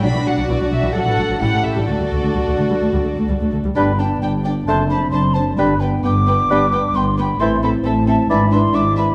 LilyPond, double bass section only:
\new Staff \with { instrumentName = "Double bass section" } { \clef bass \time 4/4 \key d \major \tempo 4 = 132 b,,16 b,,16 b,,16 b,,16 b,,16 b,,16 b,,16 b,,16 a,,16 a,,16 a,,16 a,,16 a,,16 a,,16 a,,16 a,,16 | d,16 d,16 d,16 d,16 d,16 d,16 d,16 d,16 d,16 d,16 d,16 d,16 d,16 d,16 d,16 d,16 | \key g \major g,,4 g,,4 fis,,4 fis,,4 | g,,4 g,,4 g,,4 g,,4 |
a,,4 a,,4 gis,,4 gis,,4 | }